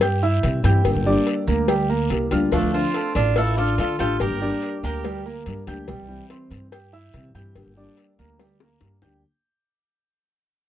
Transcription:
Already playing: G2
0.01 G4 G5 G6, muted nylon-string guitar stroke, cowbell, long guiro, maracas
0.22 E4 E5 E6, maracas
0.43 C3 E3 G3 C4 E4, cowbell, short guiro, maracas
0.63 G2 E3 G3 C4 E4 G4 G5 G6, cowbell, short guiro, maracas
0.83 G1 D3 G3 A#3 D4 G4, cowbell, long guiro, maracas
0.95 G1
1.05 G3 A#3 D4 G4 D5 D6, maracas
1.27 cowbell, short guiro, maracas
1.47 D2 A#3 A#4 A#5, short guiro, maracas
1.68 G3 G4 G5, muted nylon-string guitar stroke, cowbell, long guiro, maracas
1.89 A#3 A#4 A#5, maracas
2.10 C2 G3 A#3 D4 G4, cowbell, short guiro, maracas
2.31 D2 G3 A#3 D4 F4 G4 F5 F6, cowbell, short guiro, maracas
2.52 D2 D3 F3 A3 D4 F4 F5, cowbell, long guiro, maracas
2.62 D2
2.73 A3 C4 D4 F4, maracas
2.94 A3 A4 A5, cowbell, short guiro, maracas
3.15 A1 D4 F4, cowbell, short guiro, maracas
3.36 E4 F4 A4 F5 F6, muted nylon-string guitar stroke, cowbell, long guiro, maracas
3.57 D4 F4 A4 D5 D6, maracas
3.78 D3 A3 D4 F4 A4, cowbell, short guiro, maracas
3.99 A1 A3 D4 F4 G4 A4 G5 G6, cowbell, short guiro, maracas
4.20 G1 D3 G3 A#3 D4 G4 A#4, cowbell, long guiro, maracas
4.30 G1
4.41 G3 A#3 D4 G4 D5 D6, maracas
4.63 cowbell, short guiro, maracas
4.83 D2 A#3 G4 A#4 A#5, short guiro, maracas
5.04 G3 G4 G5, muted nylon-string guitar stroke, cowbell, long guiro, maracas
5.26 A#3 A#4 A#5, maracas
5.46 G2 G3 A#3 D4 G4, cowbell, short guiro, maracas
5.67 D2 G3 A#3 D4 G4 G5 G6, cowbell, short guiro, maracas
5.87 C2 C3 E3 G3 C4 E4 G4 G5, cowbell, long guiro, maracas
5.99 C2
6.09 E3 G3 C4 E4, maracas
6.30 C4 C5 C6, cowbell, short guiro, maracas
6.50 G2, cowbell, short guiro, maracas
6.72 G4 G5 G6, muted nylon-string guitar stroke, cowbell, long guiro, maracas
6.93 E4 E5 E6, maracas
7.13 C3 E3 G3 C4 E4, cowbell, short guiro, maracas
7.35 G2 E3 G3 C4 E4 G4 G5 G6, cowbell, short guiro, maracas
7.55 G1 D3 G3 A#3 D4 G4, cowbell, long guiro, maracas
7.66 G1
7.76 G3 A#3 D4 G4 D5 D6, maracas
7.97 cowbell, short guiro, maracas
8.19 D2 A#3 A#4 A#5, short guiro, maracas
8.39 G3 G4 G5, muted nylon-string guitar stroke, cowbell, high bongo, long guiro, maracas
8.60 A#3 A#4 A#5, high bongo, maracas
8.81 G2 G3 A#3 D4 G4, cowbell, low bongo, short guiro, maracas
9.02 D2 G3 A#3 D4 G4 G5 G6, cowbell, low bongo, short guiro, maracas

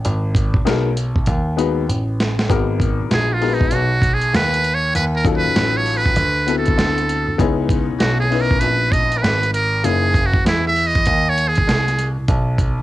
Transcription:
0.05 G#1, closed hi-hat
0.35 kick, closed hi-hat
0.54 B1, kick
0.65 B1 G#3 B3 D#4 F#4 A#4, snare, closed hi-hat
0.97 closed hi-hat
1.16 kick
1.26 D#2, kick, closed hi-hat
1.57 G#3 B3 D#4 F#4 B4, closed hi-hat
1.89 A1, closed hi-hat
2.20 snare, closed hi-hat
2.39 snare
2.48 G#1 G#3 B3 D#4 F#4 A#4, kick, closed hi-hat
2.80 kick, closed hi-hat
3.00 A#1
3.11 A#1 G#4, snare, closed hi-hat
3.33 F4
3.41 G#3 B3 D#4 F#4 A#4, open hi-hat
3.49 B4
3.54 D#4
3.61 kick
3.71 B1 F#4, closed hi-hat
4.02 kick, closed hi-hat
4.14 G#4
4.21 closed hi-hat
4.34 D#2 B4, snare, closed hi-hat
4.54 closed hi-hat
4.64 closed hi-hat
4.74 C#5
4.95 D#2 B4, closed hi-hat
5.16 A#4
5.24 F#3 C#4 D#4 F4 A4, kick, closed hi-hat
5.37 B4
5.45 A1
5.56 A1, snare, closed hi-hat
5.77 C#5
5.86 open hi-hat
5.97 B4
6.06 kick
6.16 D2, closed hi-hat
6.47 B3 C4 E4 F#4 A4, closed hi-hat
6.58 A4
6.66 kick, closed hi-hat
6.78 D2, snare, closed hi-hat
6.98 closed hi-hat
7.09 closed hi-hat
7.28 D2
7.38 C#2 B3 C#4 D#4 E4 G#4, kick, closed hi-hat
7.69 kick, closed hi-hat
7.89 B1
7.99 B1 F#4, snare, closed hi-hat
8.20 G#4
8.31 B3 C#4 D#4 E4 B4, open hi-hat
8.41 A#4
8.51 kick
8.60 A#1 B4, closed hi-hat
8.92 D#5, kick, closed hi-hat
9.12 closed hi-hat
9.18 A#4
9.22 G#1 B4, snare, closed hi-hat
9.43 closed hi-hat
9.54 A#4, closed hi-hat
9.84 F#1 A#3 C#4 D#4 E4 G#4, closed hi-hat
10.14 kick, closed hi-hat
10.26 F#4
10.34 E2, kick
10.45 E2 E4, snare, closed hi-hat
10.67 E5
10.76 open hi-hat
10.87 D#5
10.95 kick, closed hi-hat
11.06 D#2, kick, closed hi-hat
11.29 C#5
11.38 closed hi-hat
11.48 G#4
11.55 C2, kick, closed hi-hat
11.68 C2, snare, closed hi-hat
11.88 snare, closed hi-hat
11.99 closed hi-hat
12.18 C2
12.28 B1, kick, closed hi-hat
12.58 kick, closed hi-hat
12.79 D#2

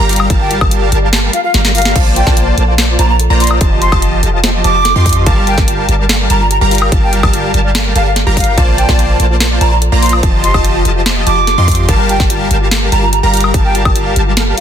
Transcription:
0.00 G1 G3 G4 A#4 F5 A#5
0.09 F4, closed hi-hat, open hi-hat
0.16 F5, closed hi-hat, high woodblock
0.30 G1 G3 F4 G4 A#4 F5 A5, kick, closed hi-hat
0.40 A#4 G5
0.51 F4, closed hi-hat
0.61 G1 G3 G4 A#4 F5 A5, kick, high woodblock
0.71 F4, closed hi-hat
0.82 F5
0.92 G1 G3 G4 A#4 F5 A5, closed hi-hat
1.03 D5
1.13 A4, snare, closed hi-hat
1.23 A#4
1.33 F4 F5, closed hi-hat
1.44 F4 F5
1.54 G1 G3 G4 A#4 F5 A#5, snare, closed hi-hat
1.65 A#4, snare
1.75 F4 F5, closed hi-hat, open hi-hat
1.82 F5, snare, closed hi-hat
1.96 A#1 A#3 F4 C5 D5 A5, kick, closed hi-hat, crash
2.06 D5
2.16 F4 G5, closed hi-hat
2.27 A#1 A#3 F4 C5 D5 A5, kick, snare
2.37 F4, closed hi-hat
2.47 A5
2.58 A#1 A#3 F4 A4 C5 D5 A5, closed hi-hat
2.68 F5
2.78 A#4, snare, closed hi-hat
2.89 D5
2.99 A#1 A#3 F4 C5 D5 A5 A#5, closed hi-hat
3.09 F4 A#5
3.20 A4, closed hi-hat
3.30 A#1 A#3 F4 C5 D5 A#5
3.40 F4 C6, closed hi-hat, open hi-hat
3.47 A5, closed hi-hat, high woodblock
3.61 F3 F4 G4 D#5 A5, kick, closed hi-hat
3.72 D#5
3.82 F4 C6, closed hi-hat
3.92 F1 F3 F4 G4 D#5 A5, kick, high woodblock
4.02 F4, closed hi-hat
4.13 A5
4.23 F1 F3 F4 G4 A4 D#5 A5, closed hi-hat
4.33 F5
4.44 C5, snare, closed hi-hat
4.54 D#5
4.64 F1 F3 F4 G4 D#5 A5 D6, closed hi-hat
4.75 F4
4.85 A4, snare, closed hi-hat
4.96 F2 F3 F4 G4 D#5 C6
5.06 F4, kick, closed hi-hat, open hi-hat
5.13 A5, closed hi-hat
5.26 G1 G3 F4 G4 A#4 F5 A5, kick, closed hi-hat
5.37 A#4
5.47 F4 G5, closed hi-hat
5.58 G1 G3 G4 A#4 F5 A5, kick, snare
5.68 F4, closed hi-hat
5.78 F5
5.89 G1 G3 G4 A#4 F5 A5, closed hi-hat
5.99 D5
6.09 A4, snare, closed hi-hat
6.20 A#4
6.30 G1 G3 F4 G4 A#4 F5 A5 A#5, closed hi-hat
6.41 F4 A#5
6.51 G4 A#5, closed hi-hat
6.61 G1 G3 G4 A#4 F5 A#5
6.71 F4, closed hi-hat, open hi-hat
6.78 F5, closed hi-hat, high woodblock
6.92 G1 G3 F4 G4 A#4 F5 A5, kick, closed hi-hat
7.03 A#4 G5
7.13 F4, closed hi-hat
7.23 G1 G3 G4 A#4 F5 A5, kick, high woodblock
7.33 F4, closed hi-hat
7.44 F5
7.54 G1 G3 G4 A#4 F5 A5, closed hi-hat
7.65 D5
7.75 A4, snare, closed hi-hat
7.85 A#4
7.95 G1 G3 G4 A4 A#4 F5 A5, closed hi-hat
8.06 G4 F5
8.16 G4, snare, closed hi-hat
8.27 G1 G3 F4 G4 A#4 F5 A#5
8.37 F5, kick, closed hi-hat, open hi-hat
8.44 F5, closed hi-hat
8.57 A#1 A#3 F4 C5 D5 A5, kick, closed hi-hat
8.68 D5
8.78 F4 G5, closed hi-hat
8.89 A#1 A#3 F4 C5 D5 A5, kick, snare
8.99 F4, closed hi-hat
9.10 A5
9.20 A#1 A#3 F4 A4 C5 D5 A5, closed hi-hat
9.30 F4
9.40 A#4, snare, closed hi-hat
9.51 D5
9.61 A#1 A#3 F4 C5 D5 A5 A#5, closed hi-hat
9.72 F4 A#5
9.82 A4, closed hi-hat
9.92 A#1 A#3 F4 C5 D5 A#5
10.02 F4 C6, closed hi-hat, open hi-hat
10.09 A5, closed hi-hat, high woodblock
10.23 F1 F3 F4 G4 D#5 A5, kick, closed hi-hat
10.34 D#5
10.44 F4 C6, closed hi-hat
10.54 F1 F3 F4 G4 D#5 A5, kick, high woodblock
10.65 F4, closed hi-hat
10.75 A5
10.85 F1 F3 F4 G4 A4 D#5 A5, closed hi-hat
10.96 F4
11.06 C5, snare, closed hi-hat
11.16 D#5
11.27 F1 F3 F4 G4 D#5 A5 D6, closed hi-hat
11.37 F4
11.47 A4, snare, closed hi-hat
11.58 F2 F3 F4 G4 D#5 C6
11.68 F4, kick, closed hi-hat, open hi-hat
11.75 A5, closed hi-hat
11.89 G1 G3 F4 G4 A#4 F5 A5, kick, closed hi-hat
11.99 A#4
12.09 F4 G5, closed hi-hat
12.20 G1 G3 G4 A#4 F5 A5, kick, snare
12.30 F4, closed hi-hat
12.41 F5
12.51 G1 G3 G4 A#4 F5 A5, closed hi-hat
12.61 F4
12.71 A4, snare, closed hi-hat
12.82 A#4
12.92 G1 G3 F4 G4 A#4 F5 A5 A#5, closed hi-hat
13.03 F4 A#5
13.13 G4 A#5, closed hi-hat
13.23 G1 G3 G4 A#4 F5 A#5
13.33 F4, closed hi-hat, open hi-hat
13.41 F5, closed hi-hat, high woodblock
13.54 G1 G3 F4 G4 A#4 F5 A5, kick, closed hi-hat
13.65 A#4 G5
13.75 F4, closed hi-hat
13.85 G1 G3 G4 A#4 F5 A5, kick, high woodblock
13.96 F4, closed hi-hat
14.06 F5
14.16 G1 G3 G4 A#4 F5 A5, closed hi-hat
14.27 F4
14.37 A4, snare, closed hi-hat
14.47 A#4

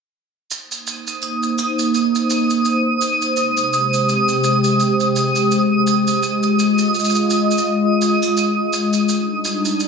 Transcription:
0.50 A#3 D#4 C5 D#6, shaker
0.71 shaker
0.87 shaker
1.07 shaker
1.22 shaker
1.43 shaker
1.58 shaker
1.79 shaker
1.94 shaker
2.15 shaker
2.30 shaker
2.50 shaker
2.65 shaker
3.01 shaker
3.22 shaker
3.36 C3 G#3 G4, shaker
3.57 shaker
3.73 shaker
3.94 shaker
4.09 shaker
4.28 shaker
4.44 shaker
4.64 shaker
4.80 shaker
5.00 shaker
5.16 shaker
5.36 shaker
5.51 shaker
5.87 shaker
6.07 shaker
6.22 F4 D#5, shaker
6.43 shaker
6.59 shaker
6.78 shaker
6.95 shaker
6.99 shaker
7.05 shaker
7.10 shaker
7.15 shaker
7.30 shaker
7.51 shaker
7.58 shaker
8.02 shaker
8.23 shaker
8.37 shaker
8.73 shaker
8.93 shaker
9.07 G3 D4 D#4, shaker
9.45 shaker
9.65 shaker
9.80 shaker

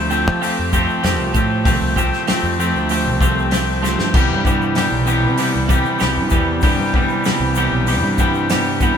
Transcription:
Already playing: D2 A3 C4 G4
0.10 F3 A3 C4 G4, shaker
0.28 F3
0.41 F3 A3 C4 G4, open hi-hat, shaker
0.59 F2
0.72 F3 A3 C4 G4, kick, shaker
0.89 shaker
1.03 F2 F3 A3 C4 G4, snare, open hi-hat, shaker
1.19 C2
1.34 A2 F3 A3 C4 G4, kick, shaker
1.64 C2 F3 A3 C4 G4, kick, open hi-hat, shaker
1.82 C2
1.96 F3 A3 C4 G4, kick, shaker
2.13 snare, shaker
2.27 F3 A3 C4 G4, snare, open hi-hat, shaker
2.43 F2
2.58 F3 A3 C4 G4, shaker
2.75 D2, shaker
2.89 F3 A3 C4 G4, open hi-hat, shaker
3.06 C2
3.19 F3 A3 C4 G4, kick, shaker
3.38 shaker
3.50 F3 A3 C4 G4, snare, open hi-hat, shaker
3.82 F3 A3 C4 G4, snare, shaker
3.99 G2, snare, shaker
4.14 C2 C3 E3 G3 B3 G4, kick, crash, shaker
4.31 G2
4.44 C3 E3 G3 B3 G4, kick, shaker
4.62 shaker
4.75 C3 E3 G3 B3 G4, snare, open hi-hat, shaker
4.92 B1
5.06 C3 E3 G3 B3 G4, shaker
5.24 C3
5.37 C3 E3 G3 B3 G4, open hi-hat, shaker
5.55 C2
5.68 C3 E3 G3 B3 G4, kick, shaker
5.84 shaker
5.98 C2 C3 E3 G3 B3 G4, snare, open hi-hat, shaker
6.17 G2
6.29 E2 C3 E3 G3 B3 G4, kick, shaker
6.61 G2 C3 E3 G3 B3 G4, kick, open hi-hat, shaker
6.79 G2
6.92 C3 E3 G3 B3 G4, kick
7.09 shaker
7.23 C3 E3 G3 B3 G4, snare, open hi-hat, shaker
7.40 C2
7.55 C3 E3 G3 B3 G4, shaker
7.72 B1
7.86 C3 E3 G3 B3 G4, open hi-hat, shaker
8.03 G2
8.18 C3 E3 G3 B3 G4, kick, shaker
8.34 shaker
8.49 C3 E3 G3 B3 G4, snare, open hi-hat, shaker
8.80 C3 E3 G3 B3 G4, kick, shaker

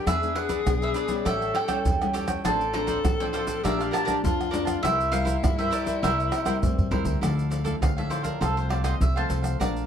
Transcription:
0.07 E2 E3 B3 D4 G#4 B4 E5, pandeiro, tamborim, shaker, surdo
0.23 B3 D4 G#4, pandeiro, shaker
0.35 D4 G#4 B4 E5 F#5, pandeiro
0.49 D4 G#4 B4 E5, pandeiro, shaker, surdo
0.66 B1 B2 B3 D4 G#4, pandeiro, tamborim, shaker, surdo
0.82 G#4 B4 E5, pandeiro, shaker
0.94 D4 G#4 B4 D5 E5, pandeiro, shaker
1.08 G3 C#4 E4 G#4 B4 E5, pandeiro, shaker, surdo
1.25 A1 A2 G4 A4 C#5 E5 G5, pandeiro, tamborim, shaker, surdo
1.41 A4 C#5 G5, pandeiro, shaker
1.54 G4 A4 C#5 G5, pandeiro, tamborim
1.68 G3 C#4 E4 G4 A4 C#5 G5, pandeiro, tamborim, shaker, surdo
1.85 E2 E3, pandeiro, shaker, surdo
2.01 G3 C#4 E4, pandeiro, tamborim, shaker
2.13 G4 A4 C#5 G5, pandeiro, shaker
2.28 A4 C#5 G5, pandeiro, tamborim, shaker, surdo
2.45 A1 A2 F3 C4 D4 F4 A4 C5 D5 A5, pandeiro, tamborim, shaker, surdo
2.61 pandeiro, shaker
2.73 F3 C4 D4 F4 A4 C5 D5 A#5, pandeiro
2.87 F4 A4 C5 D5, pandeiro, shaker, surdo
3.05 A1 A2, pandeiro, tamborim, shaker, surdo
3.20 F3 C4 D4 A4 C5 D5 G5, pandeiro, shaker
3.33 F4 A4 C5 D5 F5, pandeiro, shaker
3.47 A4 C5 D5, pandeiro, shaker, surdo
3.63 A#1 A#2 F3 A3 D4 G4 A#4 D5 E5 F5 A5, pandeiro, tamborim, shaker, surdo
3.79 D5 F5 A5, pandeiro, shaker
3.91 A#4 D5 F5 A5, pandeiro, tamborim, shaker
4.05 F3 A3 D4 A#4 D5 F5 A5, pandeiro, tamborim, shaker, surdo
4.24 F2 F4, pandeiro, shaker, surdo
4.41 pandeiro, tamborim, shaker
4.51 F3 A3 D4 A#4 D5 F5 A5, pandeiro, shaker
4.65 D5 F5 A5, pandeiro, tamborim, shaker, surdo
4.83 C2 C3 G3 A#3 E4 A#4 C5 E5, pandeiro, tamborim, shaker, surdo
5.00 pandeiro, shaker
5.11 G3 A#3 E4 A#4 C5 E5 F5, pandeiro, shaker
5.25 E4 A#4 C5 E5, pandeiro, shaker, surdo
5.43 G2, pandeiro, tamborim, shaker, surdo
5.58 G3 A#3 E4 A#4 C5 E5, pandeiro, shaker
5.71 E4 A#4 C5 D5 E5, pandeiro, shaker
5.85 A#4 C5 E5, pandeiro, shaker, surdo
6.02 C2 C3 G3 A#3 E4 A#4 C5 E5, pandeiro, tamborim, shaker, surdo
6.19 A#4 C5 E5, pandeiro, shaker
6.31 E4 A#4 C5 E5, pandeiro, tamborim, shaker
6.45 G3 A#3 E4 A#4 C5 E5, pandeiro, tamborim, shaker, surdo
6.63 G2 A2 C4, surdo, pandeiro, shaker
6.78 G2, surdo, pandeiro, shaker
6.91 E2 G3 A#3 E4 A#4 C5 E5, pandeiro, surdo
7.04 D2 A#4 C5 E5, pandeiro, shaker, surdo
7.21 D2 D3 F3 A3 E4 A4 D5 F5, pandeiro, tamborim, shaker, surdo
7.39 pandeiro, shaker
7.50 E4 A4 D5 F5, pandeiro, shaker
7.64 F3 A3 E4 A4 D5 F5, pandeiro, shaker, surdo
7.81 D2 A2 F5, pandeiro, tamborim, shaker, surdo
7.97 F3 A3 E4 A4 D5 E5 F5, pandeiro, shaker
8.10 E4 A4 C5 D5 F5, pandeiro, shaker, surdo
8.23 A4 A#4 D5 F5, pandeiro, shaker, surdo
8.41 C2 C3 F3 A3 C4 F4 A4 C5 F5, pandeiro, tamborim, shaker, surdo
8.57 C5, pandeiro, shaker
8.69 F3 A3 C4 F4 A4 C5 D5 F5, pandeiro, tamborim
8.84 F4 A4 C5 D#5 F5, pandeiro, tamborim, shaker, surdo
9.01 C2 C3 E5, pandeiro, shaker, surdo
9.16 F3 A3 C4 A4 C5 F5 A5, pandeiro, tamborim, shaker
9.29 C2 F4 A4 C5 F5, pandeiro, shaker
9.42 A4 C5 F5, pandeiro, tamborim, shaker, surdo
9.60 A#1 A#2 F3 A3 D4 A#4 D5 F5 A5, pandeiro, tamborim, shaker, surdo
9.76 pandeiro, shaker

